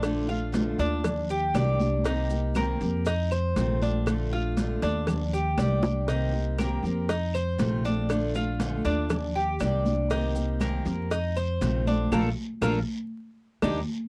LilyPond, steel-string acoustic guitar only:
\new Staff \with { instrumentName = "Steel-string acoustic guitar" } { \time 4/4 \key bes \major \tempo 4 = 119 <d a d' f'>8 <a d' f'>8 <d a d' f'>8 <a d' f'>8 r4 <ees g d' g'>8 <g d' g'>8 | <c ees bes c' g'>8 <bes c' g'>8 <c ees bes c' g'>8 <bes c' g'>8 r4 <c ees a c' f'>8 <a c' f'>8 | <d a d' f'>8 <a d' f'>8 <d a d' f'>8 <a d' f'>8 r4 <ees g d' g'>8 <g d' g'>8 | <c ees bes c' g'>8 <bes c' g'>8 <c ees bes c' g'>8 <bes c' g'>8 r4 <c ees a c' f'>8 <a c' f'>8 |
<d a d' f'>8 <a d' f'>8 <d a d' f'>8 <a d' f'>8 r4 <ees g d' g'>8 <g d' g'>8 | <c ees bes c' g'>8 <bes c' g'>8 <c ees bes c' g'>8 <bes c' g'>8 r4 <c ees a c' f'>8 <a c' f'>8 | <a bes d'>8 r8 <a bes d'>8 r4. <bes d' ees'>8 r8 | }